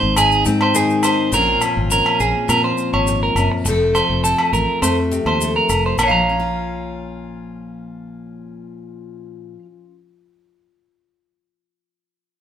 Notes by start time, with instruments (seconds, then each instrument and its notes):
Already playing: steel-string acoustic guitar G#2 D#3 C4 D#4, clean electric guitar C5
0.03 fingered electric bass G#1
0.16 steel-string acoustic guitar G#2, clean electric guitar G#4, low agogo, maracas
0.32 maracas
0.45 fingered electric bass G#2, steel-string acoustic guitar C4, muted clean electric guitar stroke, maracas
0.61 clean electric guitar C5, low agogo
0.74 steel-string acoustic guitar D#3, clean electric guitar G#4, maracas
0.90 maracas
1.03 steel-string acoustic guitar G#4, clean electric guitar C5, low agogo, maracas
1.32 fingered electric bass A#1, steel-string acoustic guitar A#2 F3 C4 C#4 F4, clean electric guitar A#4, maracas
1.61 steel-string acoustic guitar C4, low agogo, maracas
1.77 fingered electric bass G#1
1.91 steel-string acoustic guitar C#4, clean electric guitar A#4, maracas
2.06 low agogo
2.20 fingered electric bass A#1, steel-string acoustic guitar F3, clean electric guitar G#4, maracas
2.49 fingered electric bass A#2, steel-string acoustic guitar C4, clean electric guitar A#4, low agogo, maracas
2.64 clean electric guitar C5
2.78 maracas
2.93 fingered electric bass G#1, clean electric guitar C#5, low agogo
3.07 steel-string acoustic guitar G#2, maracas
3.23 clean electric guitar A#4
3.35 fingered electric bass F#1, steel-string acoustic guitar F#2, low agogo, maracas
3.52 muted clean electric guitar stroke
3.65 fingered electric bass F1, steel-string acoustic guitar F2 F3 A3 C4, muted clean electric guitar stroke, maracas
3.69 steel-string acoustic guitar A4
3.95 steel-string acoustic guitar A3, clean electric guitar C5, low agogo, maracas
4.10 fingered electric bass F1
4.24 steel-string acoustic guitar C4, clean electric guitar A4, maracas
4.38 low agogo
4.53 fingered electric bass A1, steel-string acoustic guitar F3, clean electric guitar A#4, maracas
4.82 fingered electric bass F2, steel-string acoustic guitar A3, clean electric guitar C5, low agogo, maracas
5.11 steel-string acoustic guitar C3, maracas
5.25 fingered electric bass D#2, clean electric guitar C5, low agogo
5.41 steel-string acoustic guitar A4, maracas
5.56 clean electric guitar A#4
5.69 fingered electric bass F1, muted steel-string acoustic guitar stroke, low agogo, maracas
5.86 clean electric guitar C5
5.98 fingered electric bass A#1, steel-string acoustic guitar A#2, clean electric guitar A#4, low agogo, maracas
6.03 clean electric guitar C#5
6.08 steel-string acoustic guitar F3, clean electric guitar F5 A#5
6.29 steel-string acoustic guitar C#4
6.40 steel-string acoustic guitar F4